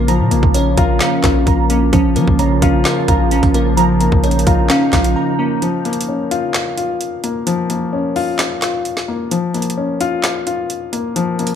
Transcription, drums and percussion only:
0.08 closed hi-hat
0.31 closed hi-hat
0.43 kick
0.54 closed hi-hat
0.77 kick, closed hi-hat
1.00 snare, clap, closed hi-hat
1.24 kick, snare, clap, closed hi-hat
1.47 kick, closed hi-hat
1.70 closed hi-hat
1.93 kick, closed hi-hat
2.16 closed hi-hat
2.27 kick
2.39 closed hi-hat
2.62 kick, closed hi-hat
2.85 snare, clap, closed hi-hat
3.08 kick, closed hi-hat
3.31 closed hi-hat
3.43 kick, closed hi-hat
3.54 closed hi-hat
3.77 closed hi-hat
4.01 closed hi-hat
4.12 kick
4.24 closed hi-hat
4.31 closed hi-hat
4.39 closed hi-hat
4.47 kick, closed hi-hat
4.70 snare, clap, closed hi-hat
4.93 kick, snare, clap, closed hi-hat
5.04 closed hi-hat
5.62 closed hi-hat
5.85 closed hi-hat
5.93 closed hi-hat
6.01 closed hi-hat
6.31 closed hi-hat
6.54 snare, clap, closed hi-hat
6.77 closed hi-hat
7.01 closed hi-hat
7.24 closed hi-hat
7.47 closed hi-hat
7.70 closed hi-hat
8.16 open hi-hat
8.39 snare, clap, closed hi-hat
8.62 snare, clap, closed hi-hat
8.85 closed hi-hat
8.97 snare
9.31 closed hi-hat
9.54 closed hi-hat
9.62 closed hi-hat
9.70 closed hi-hat
10.01 closed hi-hat
10.24 snare, clap, closed hi-hat
10.47 closed hi-hat
10.70 closed hi-hat
10.93 closed hi-hat
11.16 closed hi-hat
11.39 closed hi-hat
11.47 closed hi-hat

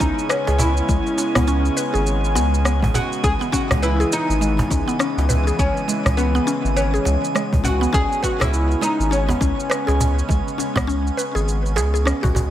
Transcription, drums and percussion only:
0.00 kick, cajon slap, shaker
0.19 shaker
0.30 cross-stick, shaker
0.47 cajon slap, shaker
0.59 cajon bass, shaker
0.77 shaker
0.89 kick, shaker
1.06 shaker
1.18 shaker
1.35 cajon bass, cross-stick, shaker
1.48 shaker
1.65 shaker
1.77 shaker
1.95 shaker
2.07 shaker
2.24 shaker
2.35 cajon slap, shaker
2.54 shaker
2.65 cross-stick, shaker
2.82 kick, cajon bass, shaker
2.94 cajon bass, shaker
3.13 shaker
3.24 kick, shaker
3.42 shaker
3.53 kick, cajon slap, shaker
3.71 cajon bass, cross-stick, shaker
3.83 shaker
4.01 shaker
4.12 cajon slap, shaker
4.30 shaker
4.42 shaker
4.59 cajon bass, cajon slap, shaker
4.71 kick, cajon slap, shaker
4.89 shaker
5.00 cross-stick, shaker
5.18 cajon slap, shaker
5.30 cajon bass, shaker
5.48 shaker
5.59 kick, shaker
5.77 shaker
5.89 shaker
6.06 cajon bass, cross-stick, shaker
6.18 shaker
6.36 shaker
6.48 shaker
6.65 shaker
6.77 shaker
6.95 shaker
7.05 cajon slap, shaker
7.24 shaker
7.36 cross-stick, shaker
7.53 kick, cajon bass, shaker
7.65 cajon bass, shaker
7.83 shaker
7.94 kick, shaker
8.12 shaker
8.23 kick, cajon slap, shaker
8.41 cajon bass, cross-stick, shaker
8.54 shaker
8.71 shaker
8.82 cajon slap, shaker
9.01 shaker
9.13 shaker
9.29 cajon bass, cajon slap, shaker
9.41 kick, cajon slap, shaker
9.60 shaker
9.71 cross-stick, shaker
9.88 cajon slap, shaker
10.00 cajon bass, shaker
10.19 shaker
10.29 kick, shaker
10.48 shaker
10.59 cajon slap, shaker
10.76 cajon bass, kick, cross-stick, shaker
10.89 shaker
11.07 shaker
11.19 shaker
11.36 shaker
11.48 shaker
11.66 shaker
11.77 cajon slap, shaker
11.95 shaker
12.07 cross-stick, shaker
12.24 cajon bass, kick, shaker
12.36 cajon bass, shaker

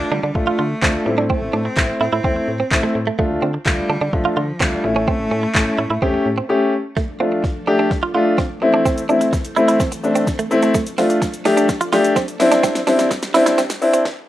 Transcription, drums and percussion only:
0.35 kick
0.82 kick, snare, clap
1.30 kick
1.77 kick, snare, clap
2.24 kick
2.71 kick, snare, clap
3.19 kick
3.66 kick, snare, clap
4.13 kick
4.60 kick, snare, clap
5.08 kick
5.54 kick, snare, clap
6.02 kick
6.97 kick, snare
7.44 kick, snare
7.91 kick, snare
8.38 kick, snare
8.86 kick, snare, shaker
8.98 closed hi-hat, shaker
9.09 shaker
9.21 closed hi-hat, shaker
9.33 kick, snare, shaker
9.45 closed hi-hat, shaker
9.56 shaker
9.69 closed hi-hat, shaker
9.80 kick, snare, shaker
9.92 closed hi-hat, shaker
10.04 shaker
10.15 closed hi-hat, shaker
10.27 kick, snare, shaker
10.39 closed hi-hat, shaker
10.51 shaker
10.63 closed hi-hat, shaker
10.74 kick, snare, shaker
10.87 closed hi-hat, shaker
10.98 snare, open hi-hat, shaker
11.10 closed hi-hat, shaker
11.22 kick, snare, shaker
11.34 closed hi-hat, shaker
11.45 snare, open hi-hat, shaker
11.57 closed hi-hat, shaker
11.69 kick, snare, shaker
11.81 closed hi-hat, shaker
11.93 snare, open hi-hat, shaker
12.04 closed hi-hat, shaker
12.16 kick, snare, shaker
12.28 closed hi-hat, shaker
12.40 snare, open hi-hat, shaker
12.52 snare, closed hi-hat, shaker
12.64 kick, snare, shaker
12.75 snare, closed hi-hat, shaker
12.87 snare, open hi-hat, shaker
12.99 snare, closed hi-hat, shaker
13.11 kick, snare, shaker
13.23 snare, closed hi-hat, shaker
13.34 snare, open hi-hat, shaker
13.46 snare, closed hi-hat, shaker
13.58 snare, shaker
13.70 snare, closed hi-hat, shaker
13.82 open hi-hat, shaker
13.94 closed hi-hat, shaker
14.05 kick, snare

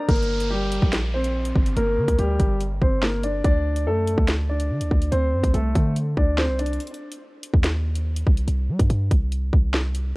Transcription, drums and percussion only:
0.09 kick, closed hi-hat
0.16 closed hi-hat
0.23 closed hi-hat
0.40 closed hi-hat
0.72 closed hi-hat
0.82 kick
0.93 snare, closed hi-hat
1.24 closed hi-hat
1.45 closed hi-hat
1.56 kick
1.66 closed hi-hat
1.77 closed hi-hat
2.08 kick, closed hi-hat
2.19 closed hi-hat
2.40 kick, closed hi-hat
2.61 closed hi-hat
2.82 kick
3.03 snare
3.23 closed hi-hat
3.44 kick, closed hi-hat
3.76 closed hi-hat
4.08 closed hi-hat
4.18 kick
4.28 snare, closed hi-hat
4.60 closed hi-hat
4.81 closed hi-hat
4.91 kick
5.02 closed hi-hat
5.12 closed hi-hat
5.44 kick, closed hi-hat
5.54 closed hi-hat
5.75 kick, closed hi-hat
5.96 closed hi-hat
6.17 kick
6.38 snare
6.59 closed hi-hat, open hi-hat
6.66 closed hi-hat
6.73 closed hi-hat
6.80 closed hi-hat
6.87 closed hi-hat
6.94 closed hi-hat
7.12 closed hi-hat
7.43 closed hi-hat
7.54 kick
7.64 snare, closed hi-hat
7.96 closed hi-hat
8.17 closed hi-hat
8.27 kick
8.37 closed hi-hat
8.48 closed hi-hat
8.79 kick, closed hi-hat
8.90 closed hi-hat
9.11 kick, closed hi-hat
9.32 closed hi-hat
9.53 kick
9.74 snare
9.95 closed hi-hat

